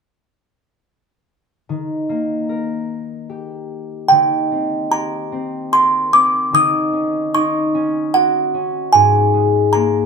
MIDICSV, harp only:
0, 0, Header, 1, 2, 480
1, 0, Start_track
1, 0, Key_signature, -3, "major"
1, 0, Tempo, 809717
1, 998, Time_signature, 3, 2, 24, 8
1, 3874, Tempo, 797872
1, 5993, End_track
2, 0, Start_track
2, 0, Title_t, "Harp"
2, 0, Program_c, 0, 46
2, 1003, Note_on_c, 0, 51, 54
2, 1241, Note_on_c, 0, 58, 44
2, 1477, Note_on_c, 0, 70, 47
2, 1953, Note_on_c, 0, 67, 46
2, 2428, Note_off_c, 0, 51, 0
2, 2435, Note_on_c, 0, 51, 54
2, 2677, Note_on_c, 0, 60, 43
2, 2735, Note_off_c, 0, 70, 0
2, 2904, Note_off_c, 0, 67, 0
2, 2907, Note_on_c, 0, 67, 45
2, 3147, Note_off_c, 0, 58, 0
2, 3152, Note_off_c, 0, 60, 0
2, 3154, Note_on_c, 0, 60, 47
2, 3395, Note_on_c, 0, 70, 46
2, 3632, Note_off_c, 0, 60, 0
2, 3635, Note_on_c, 0, 60, 46
2, 3864, Note_off_c, 0, 51, 0
2, 3871, Note_on_c, 0, 51, 57
2, 4109, Note_on_c, 0, 61, 43
2, 4145, Note_off_c, 0, 60, 0
2, 4308, Note_off_c, 0, 67, 0
2, 4361, Note_on_c, 0, 63, 51
2, 4600, Note_off_c, 0, 61, 0
2, 4602, Note_on_c, 0, 61, 51
2, 4665, Note_off_c, 0, 70, 0
2, 4840, Note_on_c, 0, 66, 46
2, 5078, Note_off_c, 0, 61, 0
2, 5080, Note_on_c, 0, 61, 50
2, 5321, Note_on_c, 0, 44, 58
2, 5345, Note_off_c, 0, 51, 0
2, 5558, Note_on_c, 0, 56, 47
2, 5799, Note_on_c, 0, 58, 53
2, 5988, Note_off_c, 0, 63, 0
2, 5993, Note_off_c, 0, 44, 0
2, 5993, Note_off_c, 0, 56, 0
2, 5993, Note_off_c, 0, 58, 0
2, 5993, Note_off_c, 0, 61, 0
2, 5993, Note_off_c, 0, 66, 0
2, 5993, End_track
0, 0, End_of_file